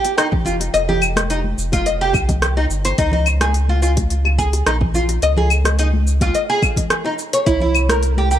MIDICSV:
0, 0, Header, 1, 4, 480
1, 0, Start_track
1, 0, Key_signature, -4, "minor"
1, 0, Tempo, 560748
1, 632, Time_signature, 4, 2, 24, 8
1, 7183, End_track
2, 0, Start_track
2, 0, Title_t, "Oud"
2, 0, Program_c, 0, 24
2, 0, Note_on_c, 0, 67, 104
2, 138, Note_off_c, 0, 67, 0
2, 151, Note_on_c, 0, 63, 81
2, 224, Note_off_c, 0, 63, 0
2, 390, Note_on_c, 0, 65, 71
2, 463, Note_off_c, 0, 65, 0
2, 631, Note_on_c, 0, 75, 83
2, 704, Note_off_c, 0, 75, 0
2, 760, Note_on_c, 0, 67, 74
2, 867, Note_off_c, 0, 67, 0
2, 1114, Note_on_c, 0, 63, 72
2, 1185, Note_off_c, 0, 63, 0
2, 1481, Note_on_c, 0, 65, 98
2, 1581, Note_off_c, 0, 65, 0
2, 1595, Note_on_c, 0, 75, 76
2, 1666, Note_off_c, 0, 75, 0
2, 1723, Note_on_c, 0, 67, 89
2, 1828, Note_off_c, 0, 67, 0
2, 2200, Note_on_c, 0, 63, 71
2, 2264, Note_off_c, 0, 63, 0
2, 2440, Note_on_c, 0, 72, 84
2, 2541, Note_off_c, 0, 72, 0
2, 2554, Note_on_c, 0, 63, 102
2, 2667, Note_off_c, 0, 63, 0
2, 2678, Note_on_c, 0, 63, 73
2, 2786, Note_off_c, 0, 63, 0
2, 2922, Note_on_c, 0, 68, 82
2, 3027, Note_off_c, 0, 68, 0
2, 3162, Note_on_c, 0, 65, 69
2, 3263, Note_off_c, 0, 65, 0
2, 3273, Note_on_c, 0, 65, 75
2, 3345, Note_off_c, 0, 65, 0
2, 3754, Note_on_c, 0, 68, 103
2, 3982, Note_off_c, 0, 68, 0
2, 3996, Note_on_c, 0, 63, 75
2, 4066, Note_off_c, 0, 63, 0
2, 4235, Note_on_c, 0, 65, 68
2, 4306, Note_off_c, 0, 65, 0
2, 4476, Note_on_c, 0, 75, 86
2, 4547, Note_off_c, 0, 75, 0
2, 4601, Note_on_c, 0, 68, 76
2, 4707, Note_off_c, 0, 68, 0
2, 4956, Note_on_c, 0, 63, 82
2, 5026, Note_off_c, 0, 63, 0
2, 5321, Note_on_c, 0, 65, 102
2, 5422, Note_off_c, 0, 65, 0
2, 5435, Note_on_c, 0, 75, 73
2, 5506, Note_off_c, 0, 75, 0
2, 5560, Note_on_c, 0, 68, 99
2, 5667, Note_off_c, 0, 68, 0
2, 6040, Note_on_c, 0, 63, 68
2, 6104, Note_off_c, 0, 63, 0
2, 6279, Note_on_c, 0, 73, 82
2, 6380, Note_off_c, 0, 73, 0
2, 6389, Note_on_c, 0, 64, 96
2, 6505, Note_off_c, 0, 64, 0
2, 6517, Note_on_c, 0, 64, 74
2, 6625, Note_off_c, 0, 64, 0
2, 6761, Note_on_c, 0, 70, 80
2, 6867, Note_off_c, 0, 70, 0
2, 7002, Note_on_c, 0, 67, 76
2, 7103, Note_off_c, 0, 67, 0
2, 7114, Note_on_c, 0, 67, 73
2, 7183, Note_off_c, 0, 67, 0
2, 7183, End_track
3, 0, Start_track
3, 0, Title_t, "Sub bass"
3, 0, Program_c, 1, 38
3, 392, Note_on_c, 1, 29, 87
3, 594, Note_off_c, 1, 29, 0
3, 633, Note_on_c, 1, 29, 100
3, 1321, Note_off_c, 1, 29, 0
3, 1353, Note_on_c, 1, 29, 102
3, 1828, Note_off_c, 1, 29, 0
3, 1833, Note_on_c, 1, 36, 99
3, 2281, Note_off_c, 1, 36, 0
3, 2311, Note_on_c, 1, 31, 94
3, 2513, Note_off_c, 1, 31, 0
3, 2556, Note_on_c, 1, 37, 101
3, 3483, Note_off_c, 1, 37, 0
3, 3513, Note_on_c, 1, 37, 109
3, 3961, Note_off_c, 1, 37, 0
3, 3993, Note_on_c, 1, 34, 81
3, 4441, Note_off_c, 1, 34, 0
3, 4473, Note_on_c, 1, 37, 100
3, 5402, Note_off_c, 1, 37, 0
3, 6393, Note_on_c, 1, 36, 100
3, 7183, Note_off_c, 1, 36, 0
3, 7183, End_track
4, 0, Start_track
4, 0, Title_t, "Drums"
4, 39, Note_on_c, 9, 46, 55
4, 42, Note_on_c, 9, 69, 43
4, 44, Note_on_c, 9, 60, 64
4, 125, Note_off_c, 9, 46, 0
4, 128, Note_off_c, 9, 69, 0
4, 129, Note_off_c, 9, 60, 0
4, 155, Note_on_c, 9, 37, 79
4, 155, Note_on_c, 9, 46, 45
4, 159, Note_on_c, 9, 69, 36
4, 241, Note_off_c, 9, 37, 0
4, 241, Note_off_c, 9, 46, 0
4, 244, Note_off_c, 9, 69, 0
4, 275, Note_on_c, 9, 64, 96
4, 280, Note_on_c, 9, 36, 115
4, 360, Note_off_c, 9, 64, 0
4, 366, Note_off_c, 9, 36, 0
4, 383, Note_on_c, 9, 64, 92
4, 397, Note_on_c, 9, 69, 81
4, 469, Note_off_c, 9, 64, 0
4, 483, Note_off_c, 9, 69, 0
4, 517, Note_on_c, 9, 60, 50
4, 521, Note_on_c, 9, 46, 54
4, 524, Note_on_c, 9, 69, 47
4, 602, Note_off_c, 9, 60, 0
4, 606, Note_off_c, 9, 46, 0
4, 609, Note_off_c, 9, 69, 0
4, 635, Note_on_c, 9, 46, 44
4, 638, Note_on_c, 9, 69, 37
4, 720, Note_off_c, 9, 46, 0
4, 724, Note_off_c, 9, 69, 0
4, 760, Note_on_c, 9, 64, 84
4, 846, Note_off_c, 9, 64, 0
4, 871, Note_on_c, 9, 75, 75
4, 874, Note_on_c, 9, 69, 76
4, 957, Note_off_c, 9, 75, 0
4, 960, Note_off_c, 9, 69, 0
4, 993, Note_on_c, 9, 63, 61
4, 996, Note_on_c, 9, 60, 59
4, 1000, Note_on_c, 9, 37, 75
4, 1000, Note_on_c, 9, 46, 51
4, 1003, Note_on_c, 9, 69, 46
4, 1079, Note_off_c, 9, 63, 0
4, 1082, Note_off_c, 9, 60, 0
4, 1085, Note_off_c, 9, 37, 0
4, 1085, Note_off_c, 9, 46, 0
4, 1089, Note_off_c, 9, 69, 0
4, 1113, Note_on_c, 9, 46, 43
4, 1116, Note_on_c, 9, 69, 36
4, 1199, Note_off_c, 9, 46, 0
4, 1202, Note_off_c, 9, 69, 0
4, 1232, Note_on_c, 9, 63, 56
4, 1318, Note_off_c, 9, 63, 0
4, 1356, Note_on_c, 9, 69, 85
4, 1442, Note_off_c, 9, 69, 0
4, 1474, Note_on_c, 9, 60, 64
4, 1477, Note_on_c, 9, 63, 61
4, 1480, Note_on_c, 9, 46, 56
4, 1481, Note_on_c, 9, 36, 96
4, 1483, Note_on_c, 9, 69, 50
4, 1559, Note_off_c, 9, 60, 0
4, 1563, Note_off_c, 9, 63, 0
4, 1566, Note_off_c, 9, 36, 0
4, 1566, Note_off_c, 9, 46, 0
4, 1569, Note_off_c, 9, 69, 0
4, 1592, Note_on_c, 9, 46, 40
4, 1596, Note_on_c, 9, 69, 36
4, 1678, Note_off_c, 9, 46, 0
4, 1681, Note_off_c, 9, 69, 0
4, 1825, Note_on_c, 9, 60, 49
4, 1832, Note_on_c, 9, 75, 59
4, 1834, Note_on_c, 9, 36, 105
4, 1835, Note_on_c, 9, 69, 81
4, 1911, Note_off_c, 9, 60, 0
4, 1918, Note_off_c, 9, 75, 0
4, 1920, Note_off_c, 9, 36, 0
4, 1921, Note_off_c, 9, 69, 0
4, 1956, Note_on_c, 9, 64, 87
4, 1958, Note_on_c, 9, 63, 38
4, 1959, Note_on_c, 9, 46, 49
4, 1959, Note_on_c, 9, 60, 66
4, 1961, Note_on_c, 9, 36, 64
4, 1962, Note_on_c, 9, 69, 42
4, 2041, Note_off_c, 9, 64, 0
4, 2044, Note_off_c, 9, 46, 0
4, 2044, Note_off_c, 9, 63, 0
4, 2045, Note_off_c, 9, 60, 0
4, 2047, Note_off_c, 9, 36, 0
4, 2048, Note_off_c, 9, 69, 0
4, 2073, Note_on_c, 9, 37, 73
4, 2073, Note_on_c, 9, 46, 44
4, 2076, Note_on_c, 9, 69, 34
4, 2159, Note_off_c, 9, 37, 0
4, 2159, Note_off_c, 9, 46, 0
4, 2162, Note_off_c, 9, 69, 0
4, 2201, Note_on_c, 9, 60, 69
4, 2286, Note_off_c, 9, 60, 0
4, 2315, Note_on_c, 9, 69, 79
4, 2400, Note_off_c, 9, 69, 0
4, 2437, Note_on_c, 9, 46, 47
4, 2440, Note_on_c, 9, 69, 43
4, 2523, Note_off_c, 9, 46, 0
4, 2526, Note_off_c, 9, 69, 0
4, 2552, Note_on_c, 9, 46, 46
4, 2554, Note_on_c, 9, 36, 114
4, 2555, Note_on_c, 9, 69, 35
4, 2638, Note_off_c, 9, 46, 0
4, 2640, Note_off_c, 9, 36, 0
4, 2641, Note_off_c, 9, 69, 0
4, 2668, Note_on_c, 9, 64, 99
4, 2754, Note_off_c, 9, 64, 0
4, 2790, Note_on_c, 9, 75, 76
4, 2794, Note_on_c, 9, 69, 77
4, 2876, Note_off_c, 9, 75, 0
4, 2879, Note_off_c, 9, 69, 0
4, 2913, Note_on_c, 9, 63, 61
4, 2919, Note_on_c, 9, 37, 73
4, 2919, Note_on_c, 9, 46, 51
4, 2919, Note_on_c, 9, 60, 65
4, 2922, Note_on_c, 9, 69, 43
4, 2998, Note_off_c, 9, 63, 0
4, 3004, Note_off_c, 9, 37, 0
4, 3004, Note_off_c, 9, 46, 0
4, 3005, Note_off_c, 9, 60, 0
4, 3007, Note_off_c, 9, 69, 0
4, 3033, Note_on_c, 9, 46, 44
4, 3036, Note_on_c, 9, 69, 36
4, 3118, Note_off_c, 9, 46, 0
4, 3121, Note_off_c, 9, 69, 0
4, 3154, Note_on_c, 9, 63, 60
4, 3240, Note_off_c, 9, 63, 0
4, 3275, Note_on_c, 9, 69, 85
4, 3361, Note_off_c, 9, 69, 0
4, 3396, Note_on_c, 9, 60, 55
4, 3397, Note_on_c, 9, 63, 53
4, 3399, Note_on_c, 9, 46, 58
4, 3401, Note_on_c, 9, 36, 88
4, 3402, Note_on_c, 9, 69, 49
4, 3482, Note_off_c, 9, 60, 0
4, 3482, Note_off_c, 9, 63, 0
4, 3484, Note_off_c, 9, 46, 0
4, 3486, Note_off_c, 9, 36, 0
4, 3488, Note_off_c, 9, 69, 0
4, 3513, Note_on_c, 9, 46, 41
4, 3516, Note_on_c, 9, 69, 32
4, 3599, Note_off_c, 9, 46, 0
4, 3602, Note_off_c, 9, 69, 0
4, 3636, Note_on_c, 9, 60, 49
4, 3640, Note_on_c, 9, 75, 62
4, 3722, Note_off_c, 9, 60, 0
4, 3725, Note_off_c, 9, 75, 0
4, 3753, Note_on_c, 9, 36, 57
4, 3757, Note_on_c, 9, 69, 78
4, 3839, Note_off_c, 9, 36, 0
4, 3843, Note_off_c, 9, 69, 0
4, 3880, Note_on_c, 9, 46, 50
4, 3881, Note_on_c, 9, 60, 63
4, 3883, Note_on_c, 9, 69, 43
4, 3966, Note_off_c, 9, 46, 0
4, 3966, Note_off_c, 9, 60, 0
4, 3969, Note_off_c, 9, 69, 0
4, 3993, Note_on_c, 9, 37, 75
4, 3993, Note_on_c, 9, 46, 41
4, 3996, Note_on_c, 9, 69, 33
4, 4079, Note_off_c, 9, 37, 0
4, 4079, Note_off_c, 9, 46, 0
4, 4082, Note_off_c, 9, 69, 0
4, 4115, Note_on_c, 9, 64, 86
4, 4120, Note_on_c, 9, 36, 106
4, 4201, Note_off_c, 9, 64, 0
4, 4206, Note_off_c, 9, 36, 0
4, 4230, Note_on_c, 9, 64, 89
4, 4234, Note_on_c, 9, 69, 79
4, 4315, Note_off_c, 9, 64, 0
4, 4320, Note_off_c, 9, 69, 0
4, 4355, Note_on_c, 9, 60, 48
4, 4356, Note_on_c, 9, 46, 48
4, 4359, Note_on_c, 9, 69, 44
4, 4440, Note_off_c, 9, 60, 0
4, 4442, Note_off_c, 9, 46, 0
4, 4445, Note_off_c, 9, 69, 0
4, 4471, Note_on_c, 9, 46, 47
4, 4474, Note_on_c, 9, 69, 36
4, 4557, Note_off_c, 9, 46, 0
4, 4560, Note_off_c, 9, 69, 0
4, 4593, Note_on_c, 9, 64, 80
4, 4679, Note_off_c, 9, 64, 0
4, 4710, Note_on_c, 9, 75, 79
4, 4713, Note_on_c, 9, 69, 78
4, 4796, Note_off_c, 9, 75, 0
4, 4799, Note_off_c, 9, 69, 0
4, 4830, Note_on_c, 9, 63, 63
4, 4836, Note_on_c, 9, 60, 69
4, 4839, Note_on_c, 9, 37, 68
4, 4839, Note_on_c, 9, 46, 53
4, 4843, Note_on_c, 9, 69, 43
4, 4916, Note_off_c, 9, 63, 0
4, 4921, Note_off_c, 9, 60, 0
4, 4925, Note_off_c, 9, 37, 0
4, 4925, Note_off_c, 9, 46, 0
4, 4928, Note_off_c, 9, 69, 0
4, 4953, Note_on_c, 9, 46, 48
4, 4956, Note_on_c, 9, 69, 35
4, 5039, Note_off_c, 9, 46, 0
4, 5042, Note_off_c, 9, 69, 0
4, 5078, Note_on_c, 9, 63, 62
4, 5164, Note_off_c, 9, 63, 0
4, 5197, Note_on_c, 9, 69, 78
4, 5283, Note_off_c, 9, 69, 0
4, 5312, Note_on_c, 9, 63, 59
4, 5315, Note_on_c, 9, 60, 59
4, 5317, Note_on_c, 9, 46, 59
4, 5318, Note_on_c, 9, 36, 95
4, 5321, Note_on_c, 9, 69, 45
4, 5398, Note_off_c, 9, 63, 0
4, 5401, Note_off_c, 9, 60, 0
4, 5403, Note_off_c, 9, 46, 0
4, 5404, Note_off_c, 9, 36, 0
4, 5406, Note_off_c, 9, 69, 0
4, 5431, Note_on_c, 9, 46, 41
4, 5435, Note_on_c, 9, 69, 32
4, 5517, Note_off_c, 9, 46, 0
4, 5520, Note_off_c, 9, 69, 0
4, 5668, Note_on_c, 9, 60, 49
4, 5671, Note_on_c, 9, 75, 68
4, 5672, Note_on_c, 9, 36, 94
4, 5674, Note_on_c, 9, 69, 78
4, 5753, Note_off_c, 9, 60, 0
4, 5757, Note_off_c, 9, 36, 0
4, 5757, Note_off_c, 9, 75, 0
4, 5760, Note_off_c, 9, 69, 0
4, 5790, Note_on_c, 9, 64, 85
4, 5791, Note_on_c, 9, 63, 36
4, 5794, Note_on_c, 9, 60, 59
4, 5797, Note_on_c, 9, 46, 54
4, 5798, Note_on_c, 9, 36, 62
4, 5800, Note_on_c, 9, 69, 38
4, 5876, Note_off_c, 9, 64, 0
4, 5877, Note_off_c, 9, 63, 0
4, 5879, Note_off_c, 9, 60, 0
4, 5883, Note_off_c, 9, 36, 0
4, 5883, Note_off_c, 9, 46, 0
4, 5886, Note_off_c, 9, 69, 0
4, 5909, Note_on_c, 9, 37, 74
4, 5909, Note_on_c, 9, 46, 46
4, 5912, Note_on_c, 9, 69, 33
4, 5995, Note_off_c, 9, 37, 0
4, 5995, Note_off_c, 9, 46, 0
4, 5998, Note_off_c, 9, 69, 0
4, 6031, Note_on_c, 9, 60, 69
4, 6116, Note_off_c, 9, 60, 0
4, 6151, Note_on_c, 9, 69, 76
4, 6237, Note_off_c, 9, 69, 0
4, 6277, Note_on_c, 9, 46, 54
4, 6280, Note_on_c, 9, 69, 40
4, 6362, Note_off_c, 9, 46, 0
4, 6366, Note_off_c, 9, 69, 0
4, 6391, Note_on_c, 9, 36, 114
4, 6391, Note_on_c, 9, 46, 45
4, 6394, Note_on_c, 9, 69, 33
4, 6476, Note_off_c, 9, 46, 0
4, 6477, Note_off_c, 9, 36, 0
4, 6480, Note_off_c, 9, 69, 0
4, 6509, Note_on_c, 9, 64, 80
4, 6594, Note_off_c, 9, 64, 0
4, 6630, Note_on_c, 9, 75, 82
4, 6634, Note_on_c, 9, 69, 73
4, 6716, Note_off_c, 9, 75, 0
4, 6719, Note_off_c, 9, 69, 0
4, 6752, Note_on_c, 9, 63, 60
4, 6758, Note_on_c, 9, 37, 71
4, 6758, Note_on_c, 9, 46, 54
4, 6759, Note_on_c, 9, 60, 72
4, 6762, Note_on_c, 9, 69, 40
4, 6838, Note_off_c, 9, 63, 0
4, 6844, Note_off_c, 9, 37, 0
4, 6844, Note_off_c, 9, 46, 0
4, 6844, Note_off_c, 9, 60, 0
4, 6847, Note_off_c, 9, 69, 0
4, 6870, Note_on_c, 9, 46, 49
4, 6874, Note_on_c, 9, 69, 32
4, 6956, Note_off_c, 9, 46, 0
4, 6959, Note_off_c, 9, 69, 0
4, 6994, Note_on_c, 9, 63, 67
4, 7080, Note_off_c, 9, 63, 0
4, 7114, Note_on_c, 9, 69, 77
4, 7183, Note_off_c, 9, 69, 0
4, 7183, End_track
0, 0, End_of_file